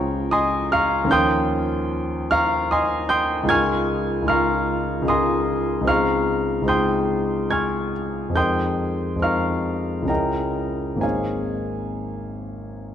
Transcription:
Already playing: C#2 G#3 C#4 F4 C5 C#5 G5 A#5 C#6
0.31 D#5 G#5 C6 D#6
0.72 F5 A#5 C#6 F6
1.04 D#2 F3 C#4
1.10 F4 A#4 G5 C6 D#6 G6
2.31 F5 A#5 C#6 F6
2.71 D#5 G#5 C6 D#6
3.09 G5 C6 D#6 G6
3.43 C#2 G#3 D#4
3.48 F4 A#4 G#5 C#6 F6 G#6
4.22 C#2 G#3 D#4
4.26 F4 A#4 F5 A#5 C#6 F6
5.02 C#2 G#3 D#4
5.06 F4 A#4 D#5 G#5 C6 D#6
5.81 C#2 G#3 C4
5.86 D#4 G#4 F5 A#5 C#6 F6
6.62 C#2 G#3 C4
6.67 D#4 G#4 G5 C6 D#6 G6
7.51 G#5 C#6 F6 G#6
8.29 F2 G#3 C4
8.34 D#4 A#4 G5 C6 D#6 G6
9.16 F2 G#3 C4
9.21 D#4 A#4 F5 A#5 C#6 F6
10.02 C#2 G#3 C#4
10.07 E4 G#4 A#4 D#5 G5 A#5
10.96 G#1 A#3 C4
11.00 D#4 G#4 C#5 F5 G#5

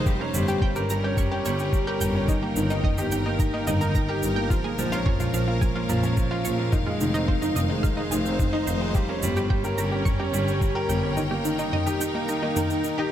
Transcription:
Already playing: D#4 C5 F5
0.06 G3 G4, kick, shaker
0.20 C#4 A#4
0.34 G1 G3, mid tom, shaker
0.48 G4, shaker
0.62 G3 G5, kick
0.76 G1 C#4 G4 A#4, shaker
0.90 G1 G3 A#4 A#5, shaker
1.04 C#4 G4 G5
1.17 G3 C#6, kick, mid tom, shaker
1.32 C#4 G4
1.45 G1 G3 C#5, shaker
1.59 G4, shaker
1.73 G3, kick, shaker
1.87 G4 A#4
2.01 G1 G3 G5, mid tom, shaker
2.15 C#4
2.28 D#3 D#4, kick, shaker
2.43 A#3 G4
2.56 G1 D#3, shaker
2.70 D#4, shaker
2.84 D#3 D#5, kick, mid tom
2.97 G1 D#4 G4, shaker
3.11 G1 D#3 G5, shaker
3.26 A#3 D#4
3.39 D#3 A#5, kick, shaker
3.54 A#3 D#4
3.67 G1 D#3 D#4, mid tom, shaker
3.81 D#4 A#4, shaker
3.95 D#3 A#5, kick, shaker
4.09 G4 A#4
4.23 G1 D#3, shaker
4.36 A#3 G5
4.50 F3 G#3 F4, kick, shaker
4.64 A#3 G#4
4.78 A#1 F3 F5, shaker
4.92 C#4 F4, shaker
5.06 F3 C#5, kick, mid tom
5.20 A#1 C#4 F4, shaker
5.34 A#1 F3 F5, shaker
5.48 A#3 F4
5.61 F3 G#5, kick, shaker
5.75 A#3 F4
5.89 A#1 F3 A#4, mid tom, shaker
6.03 C#4, shaker
6.17 F3, kick, shaker
6.31 F4
6.45 A#1 F3 C#5, shaker
6.59 A#3
6.72 D#3 D#4, kick, mid tom, shaker
6.87 G#3 F4
7.01 F1 D#3, shaker
7.14 C4 D#4, shaker
7.19 D#4
7.28 D#3 C5, kick
7.42 F1 D#4, shaker
7.56 F1 D#3 D#5, mid tom, shaker
7.68 G#3 D#4 C5
7.83 D#3 F5, kick, shaker
7.97 G#3 D#4
8.11 F1 D#3 G#4, shaker
8.26 C4, shaker
8.39 D#3, kick, mid tom, shaker
8.53 D#4
8.67 F1 D#3 C5, shaker
8.81 G#3
8.95 G3 G4, kick, shaker
9.09 C#4 A#4
9.23 G1 G3, mid tom, shaker
9.37 C#4 G4, shaker
9.50 G3 G5, kick
9.56 G5
9.64 G1 G4 A#4, shaker
9.78 G1 G3 A#5, shaker
9.83 A#4
9.92 C#4 G4
10.05 G3 C#6, kick, mid tom, shaker
10.20 C#4 G4
10.33 G1 G3 C#5, shaker
10.47 G4, shaker
10.61 G3, kick, shaker
10.75 G4 A#4
10.89 G1 G3 G5, mid tom, shaker
11.03 C#4
11.17 D#3 D#4, shaker
11.31 A#3 D#4 G4
11.45 D#3, shaker
11.58 D#4, shaker
11.72 D#3 D#5, mid tom
11.86 D#4 G4, shaker
12.00 D#3 G5, shaker
12.14 A#3 D#4
12.28 D#3 A#5, shaker
12.42 A#3 D#4
12.56 D#3 A#4, mid tom, shaker
12.70 D#4, shaker
12.84 D#3, shaker
12.98 D#4 G4

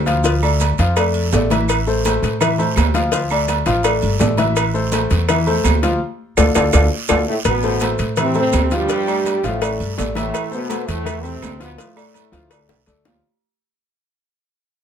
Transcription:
Already playing: D2
0.06 F3 F4 F5, cowbell, high conga, short guiro, maracas
0.24 F3 F4 F5, cowbell, low agogo, long guiro, maracas
0.42 A3 A4 D5, high conga, low agogo, claves, maracas
0.60 cowbell, high conga, low timbale, low agogo, short guiro, maracas
0.78 F2 F3 F4 F5, cowbell, high conga, short guiro, maracas
0.96 A3 A4 D5, cowbell, high conga, low agogo, long guiro, claves, maracas
1.14 high conga, low agogo, maracas
1.32 A1 A3 A4 D5, cowbell, low timbale, short guiro, maracas
1.50 E3 E4 E5, cowbell, high conga, low agogo, short guiro, maracas
1.69 cowbell, low agogo, long guiro, claves, maracas
1.87 A3 A4 C5, high conga, maracas
2.05 A3 A4 C5, cowbell, high conga, low timbale, low agogo, short guiro, maracas
2.22 A2, cowbell, high conga, short guiro, maracas
2.41 E3 E4 E5, cowbell, high conga, low conga, low agogo, long guiro, claves, maracas
2.58 A3 A4 C5, high conga, low conga, low agogo, maracas
2.76 D2, cowbell, high conga, low timbale, low agogo, short guiro, claves, maracas
2.94 F3 F4 F5, cowbell, high conga, short guiro, maracas
3.12 F3 F4 F5, cowbell, low agogo, long guiro, maracas
3.29 A3 A4 D5, high conga, low agogo, claves, maracas
3.48 cowbell, high conga, low timbale, low agogo, short guiro, maracas
3.66 A1 F3 F4 F5, cowbell, high conga, short guiro, maracas
3.83 A3 A4 D5, cowbell, high conga, low agogo, long guiro, claves, maracas
4.02 G1, high conga, low agogo, maracas
4.19 A1 A3 A4 D5, cowbell, high conga, low timbale, short guiro, maracas
4.37 E3 E4 E5, cowbell, high conga, low agogo, short guiro, maracas
4.56 cowbell, low agogo, long guiro, claves, maracas
4.74 A3 A4 C5, high conga, maracas
4.92 A3 A4 C5, cowbell, high conga, low timbale, low agogo, short guiro, maracas
5.10 E2, cowbell, high conga, short guiro, maracas
5.28 E3 E4 E5, cowbell, high conga, low conga, low agogo, long guiro, claves, maracas
5.47 A3 A4 C5, high conga, low conga, low agogo, maracas
5.64 D2, cowbell, high conga, low timbale, low agogo, short guiro, claves, maracas
5.83 F3 F4 F5, cowbell, high conga, short guiro, maracas
6.37 D2 F4 A4 D5, cowbell, high conga, high timbale, long guiro, claves, maracas
6.55 D2 F4 A4 D5, cowbell, high conga, high timbale, long guiro, claves, maracas
6.73 D2 F4 A4 D5, cowbell, high conga, high timbale, long guiro, claves, maracas
7.08 D2 F4 A4 D5, cowbell, high conga, high timbale, long guiro, claves, maracas
7.28 A2 A3
7.44 A1 B2 B3, cowbell, high conga, low agogo, long guiro, claves, maracas
7.63 A3 A4 C5, high conga, maracas
7.80 A3 A4 C5, cowbell, high conga, low timbale, low agogo, short guiro, maracas
7.98 A2, cowbell, high conga, short guiro, maracas
8.16 E3 C4 E4 E5, cowbell, high conga, low conga, low agogo, long guiro, claves, maracas
8.21 C3
8.34 A3 C4 A4 C5, high conga, low conga, low agogo, maracas
8.39 C3
8.52 D2, cowbell, high conga, low timbale, low agogo, short guiro, claves, maracas
8.71 G2 F3 G3 F4 F5, cowbell, high conga, short guiro, maracas
8.89 F3 F4 F5, cowbell, high conga, low agogo, long guiro, maracas
9.07 A3 A4 D5, high conga, low agogo, claves, maracas
9.25 cowbell, high conga, low timbale, low agogo, short guiro, maracas
9.43 A1 A2 F3 A3 F4 F5, cowbell, high conga, short guiro, maracas
9.61 A3 A4 D5, cowbell, high conga, low agogo, long guiro, claves, maracas
9.80 G1, high conga, low agogo, maracas
9.98 A1 A3 A4 D5, cowbell, high conga, low timbale, short guiro, maracas
10.15 A2 E3 A3 E4 E5, cowbell, high conga, low agogo, short guiro, maracas
10.34 cowbell, high conga, low agogo, long guiro, claves, maracas
10.51 B2 A3 B3 A4 C5, high conga, maracas
10.69 A3 A4 C5, cowbell, high conga, low timbale, low agogo, short guiro, maracas
10.87 E2 A2 A3, cowbell, high conga, short guiro, maracas
11.05 E3 E4 E5, cowbell, high conga, low conga, low agogo, long guiro, claves, maracas
11.22 C3 A3 C4 A4 C5, high conga, low conga, low agogo, maracas
11.42 D2, cowbell, high conga, low timbale, low agogo, short guiro, claves, maracas
11.60 B2 F3 B3 F4 F5, cowbell, high conga, short guiro, maracas
11.78 A2 F3 A3 F4 F5, cowbell, high conga, low agogo, long guiro, maracas
11.96 A3 A4 D5, high conga, low agogo, claves, maracas
12.14 cowbell, high conga, low timbale, low agogo, short guiro, maracas
12.32 D2 F3 F4 F5, cowbell, high conga, short guiro, maracas
12.50 A3 A4 D5, cowbell, high conga, low agogo, long guiro, claves, maracas
12.69 C2, high bongo, high conga, high timbale, low agogo, maracas
12.86 D2 A3 A4 D5, cowbell, high conga, short guiro, maracas
13.05 F3 F4 F5, cowbell, low bongo, high conga, low timbale, low agogo, short guiro

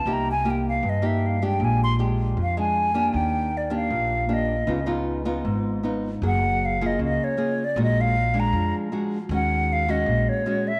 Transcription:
Already playing: A5
0.06 C2 C3 A#3 D#4 G4
0.13 A#5
0.31 G#5
0.45 A#3 D#4 G4
0.51 G5
0.69 F5
0.83 G2
0.89 D#5
1.02 A#3 D#4 G4
1.06 E5
1.26 F5
1.42 G#3 D4 G4 G5
1.60 A#1 A#2
1.64 G#5
1.84 C6
1.99 G#3 D4 G4
2.37 F2
2.43 F5
2.57 G#3 D4 G#5
2.94 A#3 D4 G4
3.13 D#2 D#3 G5
3.57 D5
3.70 A#3 D4 G4
3.77 F5
3.90 A#1 A#2
4.29 A#3 D4 G4
4.33 D#5
4.67 C#2 C#3 B3 D#4 F4
4.86 B3 D#4 F4
5.25 B3 D#4 F4
5.45 G#1 G#2
5.83 B3 D#4 F4
6.22 F#1 F#3 A#3 G#4
6.27 F#5
6.65 F5
6.81 A#3 F4 G#4
6.86 D#5
6.99 C#2 C#3
7.04 D#5
7.24 C#5
7.37 A#3 F4 G#4
7.64 D5
7.76 A#1 A#2 G#3 D4 F#4
7.83 D#5
8.01 F5
8.34 G#3 D4
8.40 A#5
8.53 F2 F3
8.92 G#3 D4 F#4
9.29 D#2 D#3 G#3 C#4 F#4
9.35 F#5
9.73 F5
9.88 G#3 C#4 F#4 D#5
10.06 A#1 A#2
10.29 C#5
10.46 G#3 C#4 F#4
10.68 E5

